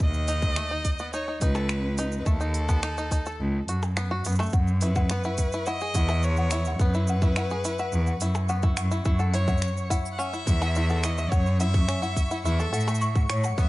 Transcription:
0.00 D#2 D#5, kick
0.14 shaker
0.28 D#4, open hi-hat, shaker
0.42 kick, shaker
0.56 A3, finger snap, shaker
0.71 D#4
0.85 kick, open hi-hat, shaker
0.99 B3, shaker
1.13 D#4 C#5, shaker
1.28 D#4
1.41 C#2 D#4 B4, kick, open hi-hat, shaker
1.55 A4, percussion blips, shaker
1.69 finger snap, shaker
1.98 D#4, open hi-hat, shaker
2.12 shaker
2.19 B4
2.26 D#2 A3 A4, kick, shaker
2.41 D#4, shaker
2.54 open hi-hat
2.69 B3, kick, percussion blips, shaker
2.83 D#4, finger snap, shaker
2.98 D#4, shaker
3.11 D#4, kick, open hi-hat, shaker
3.26 A4, shaker
3.40 C#2
3.68 F#2 F#4, open hi-hat
3.83 percussion blips, shaker
3.97 B3, finger snap, shaker
4.11 F#4
4.25 F#2 B3, open hi-hat, shaker
4.28 shaker
4.32 shaker
4.35 shaker
4.39 A3, percussion blips, shaker
4.42 shaker
4.46 shaker
4.50 shaker
4.53 F#2 F#5 C#6, kick, shaker
4.67 shaker
4.81 E4 B4, open hi-hat, shaker
4.96 F#5, kick, shaker
5.10 B3, finger snap, shaker
5.24 E4 F#5, shaker
5.38 kick, open hi-hat, shaker
5.52 E4, shaker
5.66 E4 D#5 F#5, shaker
5.80 G#4, shaker
5.95 E2 E4 F#5, kick, open hi-hat, shaker
6.09 E5, percussion blips, shaker
6.23 C#5, shaker
6.36 F#5, shaker
6.51 E4, finger snap, open hi-hat, shaker
6.65 F#5, shaker
6.80 F#2 B3 B4, kick, shaker
6.94 E4, shaker
7.08 F#5, shaker
7.22 E4, kick, shaker
7.36 E4 F#5, finger snap, shaker
7.50 G#4, shaker
7.65 E4, open hi-hat, shaker
7.78 E5 F#5, shaker
7.92 E2, shaker
8.07 F#5, shaker
8.20 F#2 E4, open hi-hat, shaker
8.35 percussion blips, shaker
8.49 B3 F#5, shaker
8.63 E4, kick, shaker
8.77 F#2 F#5, finger snap, open hi-hat, shaker
8.91 E4, shaker
9.05 F#2 E4, kick, shaker
9.19 A4 F#5, shaker
9.34 E4 C#5, open hi-hat
9.48 E5 F#5, kick, shaker
9.58 shaker
9.62 finger snap, shaker
9.77 shaker
9.90 E4 F#5, kick, open hi-hat, shaker
10.06 shaker
10.12 F#5
10.19 C#4 E5 F#5, shaker
10.33 E4, shaker
10.47 E2, kick, open hi-hat, shaker
10.61 E4 F#5, percussion blips, shaker
10.75 E4, shaker
10.89 A4 F#5, shaker
11.03 E4 D#5, finger snap, open hi-hat, shaker
11.18 E5, shaker
11.31 F#2 C#5 F#5, kick, shaker
11.46 shaker
11.60 E4 E5 F#5, open hi-hat, shaker
11.74 kick, shaker
11.88 C#4, finger snap, shaker
12.02 E4 F#5, shaker
12.17 kick, open hi-hat, shaker
12.31 E4 F#5, shaker
12.45 E2 E4 E5, shaker
12.59 A4, shaker
12.73 A2 A4 F#5, open hi-hat, shaker
12.80 shaker
12.87 A3, percussion blips, shaker
12.95 shaker
13.01 C#6, shaker
13.16 F#5, kick, shaker
13.30 A2 C#5, finger snap, open hi-hat
13.44 F#5, percussion blips, shaker
13.58 F#2 B3 E5, kick, shaker

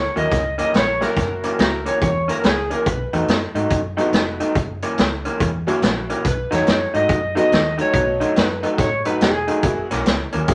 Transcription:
Already playing: C#5
0.15 D#2 F#2 E3 F#3 A#3 C#4 E4 F#4 D#5, closed hi-hat
0.32 C#2, kick, snare, closed hi-hat
0.58 F#2 E3 A#3 C#4 D#5, closed hi-hat
0.74 A#1 C#5, snare, closed hi-hat
1.00 F#2 E3 F#3 A#3 C#4 E4 F#4 A#4, snare, closed hi-hat
1.17 F#1, kick, snare, closed hi-hat
1.43 F#2 E3 A#3 C#4, closed hi-hat
1.59 C#2 F#3 A#3 C#4 E4 F#4 A#4, snare, closed hi-hat
1.86 F#2 E3 A#3 C#4 C#5, closed hi-hat
2.01 E2 C#5, kick, closed hi-hat
2.28 F#2 E3 A#3 C#4 A#4, closed hi-hat
2.43 C#2 G#4, snare, closed hi-hat
2.70 F#2 E3 A#3 C#4 A#4, closed hi-hat
2.86 B1 B4, kick, closed hi-hat
3.13 E2 B2 F#3 A3 D#4, closed hi-hat
3.28 F#2, snare, closed hi-hat
3.54 G#2 B2 F#3 A3 D#4, closed hi-hat
3.70 F#2, kick, closed hi-hat
3.97 B2 F#3 A3 B3 D#4 F#4, closed hi-hat
4.12 F1, snare, closed hi-hat
4.40 B2 F#3 A3 D#4, closed hi-hat
4.55 F#1, kick, closed hi-hat
4.82 F#2 E3 A#3 C#4, closed hi-hat
4.98 C#2, snare, closed hi-hat
5.25 F#2 E3 A#3 C#4, closed hi-hat
5.40 E2, kick, closed hi-hat
5.67 F#2 E3 F#3 A#3 C#4 E4 F#4, closed hi-hat
5.82 A#1, snare, closed hi-hat
6.10 F#2 E3 A#3 C#4, closed hi-hat
6.25 B1 B4, kick, closed hi-hat
6.51 E2 B2 F#3 A3 D#4 C#5, snare, closed hi-hat
6.67 F#2, snare, closed hi-hat
6.94 G#2 B2 F#3 A3 D#4 D#5, closed hi-hat
7.09 F#2, kick, closed hi-hat
7.35 B2 F#3 A3 B3 D#4 F#4 D#5, closed hi-hat
7.52 D#2, snare, closed hi-hat
7.78 B2 F#3 A3 D#4 C#5, closed hi-hat
7.93 B1 F#3 A3 B3 D#4 F#4, kick, closed hi-hat
8.20 B2 F#3 A3 D#4, closed hi-hat
8.36 F#2 B4, snare, closed hi-hat
8.63 B2 F#3 A3 D#4 B4, closed hi-hat
8.78 A2 C#5, kick, snare, closed hi-hat
9.05 B2 F#3 A3 D#4 B4, closed hi-hat
9.21 E1 G#4, snare, closed hi-hat
9.48 B2 F#3 A3 D#4, closed hi-hat
9.63 F#1 F#3 A#3 C#4 E4 F#4, kick, closed hi-hat
9.91 B1 F#2 E3 A#3 C#4, snare, closed hi-hat
10.06 C#2, snare, closed hi-hat
10.32 D#2 F#2 E3 A#3 C#4, closed hi-hat
10.47 C#2 F#3 A#3 C#4 E4 G#4, kick, closed hi-hat

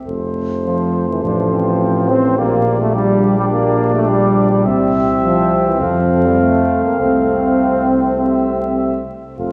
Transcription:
0.06 F1 A4 C5
0.66 F3
1.09 E3
1.24 A1 F3 D4
1.53 C4
2.09 C4
2.38 A#1 A#3 G4 D5
2.81 A3
2.95 G3 D4
3.38 G3
3.52 A#3
3.95 A3
4.09 G3
4.51 G3
4.66 C2 C4 E5
5.23 F3
5.68 E3
5.81 F2 F3 A4 F5
6.26 G3
6.40 A3
6.85 A#3
7.00 C2 A3 C4
8.19 G4 E5
9.38 F1 F4 A4 C5

